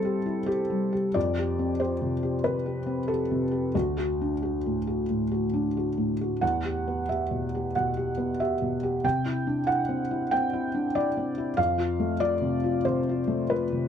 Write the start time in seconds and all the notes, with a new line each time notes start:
Already playing: C3 G3 E4 G4 A4 C5
0.05 G4
0.26 E4
0.46 G4
0.70 G3
0.93 G4
1.14 F2 D5
1.38 G4
1.59 C4
1.80 G4 C5
2.01 C3
2.23 G4
2.44 C3 B4
2.66 G4
2.86 C4
3.08 G4 A4
3.31 C3
3.51 G4
3.75 D2 F#4
3.98 F#4
4.21 D4
4.43 F#4
4.66 A2
4.87 F#4
5.10 A2
5.31 F#4
5.53 D4
5.77 F#4
5.98 A2
6.21 F#4
6.41 E2 F#5
6.64 G4
6.88 B3
7.09 G4 E5
7.31 B2
7.55 G4
7.75 B2 F#5
7.97 G4
8.18 B3
8.40 G4 E5
8.62 B2
8.83 G4
9.04 C3 G5
9.26 E4
9.47 D4
9.67 E4 F#5
9.89 C4
10.11 E4
10.31 C4 G5
10.53 E4
10.74 D4
10.95 E4 D5
11.17 C4
11.38 E4
11.57 F2 F5
11.78 F4
12.00 A3
12.20 F4 D5
12.41 C3
12.64 F4
12.85 C3 C5
13.09 F4
13.27 A3
13.50 F4 B4
13.72 C3